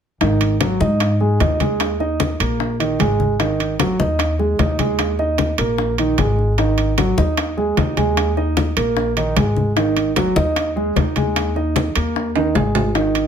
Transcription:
0.21 G#1 D#3 D#4, high bongo, high conga, high timbale
0.41 high bongo, high conga, high timbale
0.61 F#3 F#4, high bongo, high conga, high timbale, low timbale
0.81 G#2 D#4 D#5, high bongo, high conga
1.00 high bongo, high conga, high timbale
1.20 G#3 G#4, high conga
1.40 D#2 D#4 D#5, high bongo, low bongo, high conga, high timbale, low timbale
1.60 G#3 G#4, high bongo, high conga, high timbale
1.80 high bongo, high conga, high timbale
2.00 D#4 D#5, high bongo, high conga
2.20 high bongo, high conga, high timbale, low timbale
2.40 A#1 A#3 A#4, high bongo, high conga, high timbale
2.60 high bongo, high conga
2.80 D#3 D#4, high conga, high timbale
2.99 G#1 G#3 G#4, high bongo, low bongo, high conga, high timbale, low timbale
3.20 high bongo, high conga
3.40 D#3 D#4, high bongo, high conga, high timbale
3.60 high bongo, high conga, high timbale
3.79 F#3 F#4, high bongo, high conga, high timbale, low timbale
3.99 D#2 D#4 D#5, high bongo, high conga
4.19 high bongo, high conga, high timbale
4.39 G#3 G#4, high conga
4.59 D#2 D#4 D#5, high bongo, low bongo, high conga, high timbale, low timbale
4.79 G#3 G#4, high bongo, high conga, high timbale
4.99 high bongo, high conga, high timbale
5.19 D#4 D#5, high bongo, high conga
5.38 high bongo, high conga, high timbale, low timbale
5.58 A#1 A#3 A#4, high bongo, high conga, high timbale
5.78 high bongo, high conga
5.98 D#3 D#4, high conga, high timbale
6.18 G#1 G#3 G#4, high bongo, low bongo, high conga, high timbale, low timbale
6.39 high bongo
6.58 D#3 D#4, high bongo, high conga, high timbale
6.78 high bongo, high conga, high timbale
6.98 F#3 F#4, high bongo, high conga, high timbale, low timbale
7.17 D#2 D#4 D#5, high bongo, high conga
7.37 high bongo, high conga, high timbale
7.57 G#3 G#4, high conga
7.77 D#2 D#4 D#5, high bongo, low bongo, high conga, high timbale, low timbale
7.97 G#3 G#4, high bongo, high conga, high timbale
8.17 high bongo, high conga, high timbale
8.37 D#4 D#5, high bongo, high conga
8.57 high bongo, high conga, high timbale, low timbale
8.77 A#1 A#3 A#4, high bongo, high conga, high timbale
8.97 high bongo, high conga
9.17 D#3 D#4, high conga, high timbale
9.36 G#1 G#3 G#4, high bongo, low bongo, high conga, high timbale, low timbale
9.56 high bongo, high conga
9.76 D#3 D#4, high bongo, high conga, high timbale
9.97 high bongo, high conga, high timbale
10.16 F#3 F#4, high bongo, high conga, high timbale, low timbale
10.36 D#2 D#4 D#5, high bongo, high conga
10.56 high bongo, high conga, high timbale
10.76 G#3 G#4, high conga
10.96 D#2 D#4 D#5, high bongo, low bongo, high conga, high timbale, low timbale
11.16 G#3 G#4, high bongo, high conga, high timbale
11.36 high bongo, high conga, high timbale
11.56 D#4 D#5, high bongo, high conga
11.76 high bongo, high conga, high timbale, low timbale
11.96 D#2 A#3 A#4, high bongo, high conga, high timbale
12.16 high bongo, high conga
12.35 D#3 D#4, high conga, high timbale
12.55 G#1 G#3 G#4, high bongo, low bongo, high conga, low timbale
12.75 high bongo, high conga, low timbale
12.95 D#3 D#4, high bongo, high conga, high timbale
13.15 high bongo, high conga, high timbale

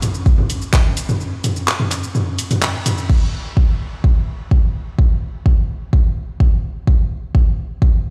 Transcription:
0.02 mid tom, open hi-hat, shaker
0.15 shaker
0.26 kick, shaker
0.38 mid tom
0.50 open hi-hat, shaker
0.62 shaker
0.73 kick, clap, mid tom, shaker
0.97 open hi-hat, shaker
1.09 mid tom, shaker
1.20 shaker
1.44 mid tom, open hi-hat, shaker
1.56 shaker
1.68 clap, shaker
1.80 mid tom
1.91 clap, open hi-hat, shaker
2.03 shaker
2.15 mid tom, shaker
2.39 open hi-hat, shaker
2.51 mid tom, open hi-hat, shaker
2.62 clap, shaker
2.86 mid tom, open hi-hat, shaker
2.98 shaker
3.10 kick, crash
3.57 kick
4.04 kick
4.51 kick
4.99 kick
5.46 kick
5.93 kick
6.40 kick
6.87 kick
7.35 kick
7.82 kick

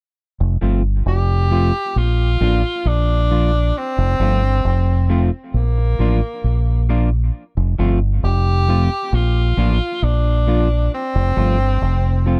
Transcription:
0.40 F1
0.61 G1 F3 A3 C4 F4
1.06 F1 G4
1.51 F3 A3 C4 F4
1.96 A#1 F4
2.41 A1 F3 A#3 D4 F4
2.85 A#1 D4
3.31 F3 A#3 D4 F4
3.78 C4
3.98 F1
4.19 G1 F3 A3 C4 F4
4.65 F1
5.09 F3 A3 C4 F4
5.54 A#1 A#3
5.78 muted clean electric guitar stroke
5.99 A1 F3 A#3 D4 F4
6.44 A#1
6.89 F3 A#3 D4 F4
7.57 F1
7.79 G1 F3 A3 C4 F4
8.23 F1 G4
8.68 F3 A3 C4 F4
9.13 A#1 F4
9.57 A1 F3 A#3 D4 F4
10.02 A#1 D4
10.47 F3 A#3 D4 F4
10.94 C4
11.15 F1
11.36 G1 F3 A3 C4 F4
11.81 F1
12.26 F3 A3 C4 F4

